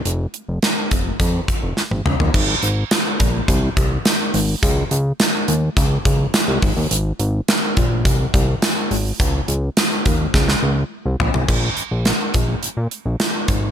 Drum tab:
CC |----------------|x---------------|----------------|----------------|
HH |x-x-x-x-x-x-----|--x-x-x-x-x-x-o-|x-x-x-x-x-x-x-o-|x-x-x-x-x-x-x-o-|
TB |----------------|----x-------x---|----x-------x---|----x-------x---|
SD |----o-------o---|----o-------o---|----o-------o---|----o-------o---|
T1 |-------------o--|----------------|----------------|----------------|
T2 |--------------o-|----------------|----------------|----------------|
FT |---------------o|----------------|----------------|----------------|
BD |------o-o-o-----|o-----o-o-o-----|o-------o-o---o-|------o-o-o-----|

CC |----------------|x---------------|
HH |x-x-x-x---------|--x-x-x-x-x-x-x-|
TB |----x-----------|----------------|
SD |----o---oo------|----o-------o---|
T1 |----------------|----------------|
T2 |----------------|----------------|
FT |--------------oo|----------------|
BD |o-----o-o-------|o-----o-------o-|